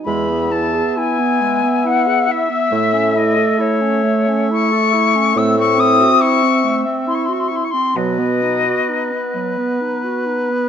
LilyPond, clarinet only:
\new Staff \with { instrumentName = "Clarinet" } { \time 3/4 \key e \major \tempo 4 = 68 gis16 b16 e'16 gis'16 e'16 b16 gis16 b16 e'16 gis'16 e'16 b16 | a16 cis'16 e'16 a'16 e'16 cis'16 a16 cis'16 e'16 a'16 e'16 cis'16 | a16 c'16 e'16 fis'16 e'16 c'16 a16 c'16 e'16 fis'16 e'16 c'16 | fis16 b16 dis'16 fis'16 dis'16 b16 fis16 b16 dis'16 fis'16 dis'16 b16 | }